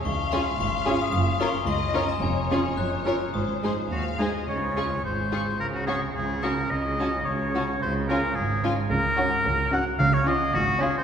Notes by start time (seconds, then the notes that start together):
0.04 C#2 C#3 F5 C#6
0.31 C#4 F4 G#4 C#5 C6
0.59 G#1 G#2 C#6
0.86 C#4 F4 G#4 C#5
1.02 D#6
1.12 F#1 F#2 D#6
1.40 C#4 F4 A#4 C#5 C#6
1.66 C#2 D#5 C6
1.94 C#4 F4 A#4 C#5
2.09 A#5
2.21 F1 F2 C#5 G#5
2.50 C#4 F4 G#4 C#5
2.77 F#1 F#2 F#6
3.05 C#4 F4 A#4 C#5 F6
3.33 G#1 G#2 C5 D#6
3.63 G#3 D#4 G#4 C5
3.89 D#2 F#4 F5
4.19 G#3 D#4 G#4 C5 D#5
4.47 C#2 C#3 C#5
4.76 F4 G#4 C#6
5.04 G#1 G#2 C5
5.32 F4 G#4 C#6
5.59 C#2 C#3 A#4
5.74 F#4
5.87 C#4 F#4 G#4 C#6
6.14 C#2 C#3 G#4
6.42 C#4 F#4 A#4 C#6
6.71 C#2 C#3 D#5
6.99 C#4 F#4 A5
7.25 C#2 C#3 C#5
7.55 C#4 F#4 A5
7.81 C#2 C#3 C5
8.08 C#4 F4 A#4 G#5
8.35 G#1 G#2 G#4
8.63 C#4 F4 G#5
8.90 C#2 C#3 A#4
9.17 C#4 F#4 F#5
9.45 C#2 C#3
9.72 C#4 F#4 F#5
9.99 C#2 C#3 F5
10.13 C#5
10.26 C#4 F4 D#5 G#5
10.54 G#1 G#2 F#4
10.81 C#4 F4 G#4 G#5
10.97 C5